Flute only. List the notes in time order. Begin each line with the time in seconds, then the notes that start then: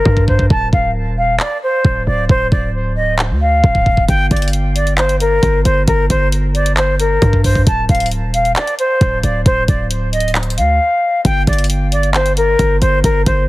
Already playing: A#4
0.28 C5
0.50 A5
0.73 F5
1.18 F5
1.40 D5
1.63 C5
2.06 D5
2.29 C5
2.52 D5
2.96 D#5
3.41 F5
4.08 G5
4.31 D5
4.76 D5
4.98 C5
5.20 A#4
5.64 C5
5.87 A#4
6.10 C5
6.55 D5
6.77 C5
6.99 A#4
7.44 C5
7.67 A5
7.89 F5
8.34 F5
8.57 D5
8.79 C5
9.23 D5
9.46 C5
9.68 D5
10.12 D#5
10.58 F5
11.25 G5
11.48 D5
11.92 D5
12.15 C5
12.37 A#4
12.81 C5
13.04 A#4
13.26 C5